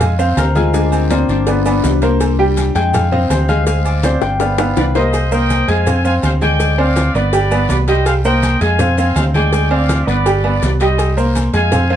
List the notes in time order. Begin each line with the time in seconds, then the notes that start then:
Already playing: F2 G#3 G#4 F5 G#5 B5
0.00 D#5, cowbell, high conga, low conga, low agogo, long guiro, maracas
0.19 C4 C5 F5, high conga, low agogo, maracas
0.37 D2 A#4, cowbell, high conga, low timbale, low agogo, short guiro, maracas
0.55 G#3 F4 G#4 G#5, high conga, low agogo, short guiro, maracas
0.74 G#3 D4 G#4 G#5, cowbell, high conga, long guiro, maracas
0.92 C4, high conga, low agogo, maracas
1.10 A#3 C4 C5 D5, cowbell, high conga, low timbale, low agogo, short guiro, maracas
1.28 G1 D4, high conga, short guiro, maracas
1.47 B3 B4 D5, cowbell, high conga, low agogo, long guiro, maracas
1.66 B3 B4 D5, high conga, low agogo, maracas
1.83 C2, cowbell, high conga, low timbale, short guiro, maracas
2.02 A#3 A#4 C5, cowbell, low agogo, short guiro, maracas
2.20 cowbell, high conga, low agogo, long guiro, maracas
2.39 G3 G4 G5, high conga
2.57 cowbell, high conga, low timbale, low agogo, short guiro, maracas
2.75 F2 G#3 G#4 G5 G#5, cowbell, high conga, short guiro, maracas
2.93 F5, cowbell, high conga, low conga, low agogo, long guiro, maracas
3.12 C4 C5 D#5 F5, high conga, low conga, low agogo
3.30 D2 C5, cowbell, high conga, low timbale, low agogo, short guiro, maracas
3.48 G#3 G#4 F5 G#5, high conga, low agogo, short guiro, maracas
3.67 G#3 G#4 F5 G#5, cowbell, high conga, long guiro, maracas
3.85 D5, high conga, low agogo, maracas
4.03 C4 C5 D5, cowbell, high conga, low timbale, low agogo, short guiro, maracas
4.21 G1 G5, high bongo, short guiro, maracas
4.40 B3 B4 D5 F5, cowbell, high bongo, high conga, low agogo, long guiro, maracas
4.58 B3 B4 D5 F5, high bongo, high conga, high timbale, low agogo, maracas
4.77 C2 B4 D5, cowbell, low bongo, high conga, high timbale, short guiro, maracas
4.95 A#3 A#4 C5 D#5, cowbell, low bongo, low timbale, low agogo, short guiro, maracas
5.13 cowbell, high conga, low agogo, long guiro, maracas
5.32 A#3 A#4 C5 D#5 G5, high conga, maracas
5.50 cowbell, high conga, low timbale, low agogo, short guiro, maracas
5.68 F2 G#3 G#4 F5 G#5, cowbell, high conga, short guiro, maracas
5.86 C4 C5 F5, cowbell, high conga, low conga, low agogo, long guiro, maracas
6.04 C4 C5 F5 G#5, high conga, low agogo, maracas
6.23 D2 C5 F5, cowbell, high conga, low timbale, low agogo, short guiro, maracas
6.41 G#3 G#4 D5 G5 G#5, high conga, low agogo, short guiro, maracas
6.59 G#3 G#4 G#5, cowbell, long guiro, maracas
6.78 C4 C5 D5 F5, high conga, low agogo
6.96 cowbell, high conga, low timbale, low agogo, short guiro, maracas
7.14 G1 B3 B4 D5, high conga, short guiro, maracas
7.33 G3 G4 G5, cowbell, high conga, low agogo, long guiro, maracas
7.51 B3 B4 D5, high conga, low agogo, maracas
7.69 C2 B4 D5, cowbell, high conga, low timbale, short guiro, maracas
7.88 G3 G4 C5 D#5 G5, cowbell, low agogo, short guiro, maracas
8.06 C5 F5, cowbell, high conga, low agogo, long guiro, maracas
8.24 A#3 A#4 C5 D#5 G5, high conga, maracas
8.43 cowbell, high conga, low timbale, low agogo, short guiro, maracas
8.61 F2 G#3 G#4 F5 G#5, cowbell, high conga, short guiro, maracas
8.79 C4 C5 F5, cowbell, high conga, low conga, low agogo, long guiro, maracas
8.97 C4 C5 F5 G#5, high conga, low agogo, maracas
9.16 D2 C5 F5, cowbell, high conga, low timbale, low agogo, short guiro, maracas
9.34 G#3 G#4 D5 G5 G#5, high conga, low agogo, short guiro, maracas
9.52 G#3 G#4 G#5, cowbell, high conga, long guiro, maracas
9.71 C4 C5 D5 F5, high conga, low agogo
9.89 cowbell, high conga, low timbale, low agogo, short guiro, maracas
10.07 G1 B3 B4 D5, high conga, short guiro, maracas
10.26 G3 G4 G5, cowbell, high conga, low agogo, long guiro, maracas
10.44 B3 B4 D5, high conga, low agogo
10.62 C2 B4 D5, cowbell, high conga, low timbale, short guiro, maracas
10.80 G3 G4 C5 D#5 G5, cowbell, low agogo, short guiro, maracas
10.98 cowbell, high conga, low agogo, long guiro, maracas
11.17 A#3 A#4 C5, high conga, maracas
11.35 cowbell, high conga, low timbale, low agogo, short guiro, maracas
11.53 F2 G#3 G#4 F5 G#5, cowbell, high conga, short guiro, maracas
11.72 C4 C5 F5, cowbell, high conga, low conga, low agogo, long guiro, maracas
11.90 C4 C5 F5 G#5, high conga, low agogo